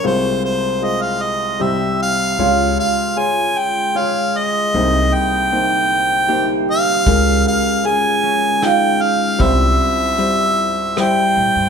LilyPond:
<<
  \new Staff \with { instrumentName = "Harmonica" } { \time 3/4 \key c \phrygian \tempo 4 = 77 c''8 c''8 ees''16 f''16 ees''8 e''8 f''8~ | f''8 f''8 aes''8 g''8 f''8 ees''8~ | ees''8 g''2 f''8~ | f''8 f''8 aes''4 g''8 f''8 |
e''2 g''4 | }
  \new Staff \with { instrumentName = "Harp" } { \time 3/4 \key c \phrygian bes'8 r4. g'4 | f'2 aes'4~ | aes'8 r4. g'4~ | g'8 r4 des'8 f'4~ |
f'8 r2 r8 | }
  \new Staff \with { instrumentName = "Felt piano" } { \time 3/4 \key c \phrygian <aes f' c''>4 <aes f' c''>4 <g e' c''>4 | <aes f' des''>4 <aes f' des''>4 <aes f' des''>4 | <bes ees' c''>4 <bes ees' c''>4 <bes ees' c''>4 | <aes des' bes'>4 <aes des' aes'>4 <aes des' ees'>4 |
<g e' c''>4 <g e' c''>4 <g e' c''>4 | }
  \new Staff \with { instrumentName = "Felt piano" } { \clef bass \time 3/4 \key c \phrygian <c, c>2 <c, c>4 | <des, des>2. | <c, c>2. | <des, des>2. |
<c, c'>2. | }
  \new Staff \with { instrumentName = "Upright bass" } { \clef bass \time 3/4 \key c \phrygian r2. | des,8 r2 r8 | c,8 r2 r8 | des,8 r2 r8 |
c,8 r2 bes,16 g,16 | }
  \new DrumStaff \with { instrumentName = "Drums" } \drummode { \time 3/4 r4 r4 r4 | r4 r4 r4 | r4 r4 r4 | <hh bd>4 hh4 <hh ss>4 |
<hh bd>4 hh4 <hh ss>4 | }
>>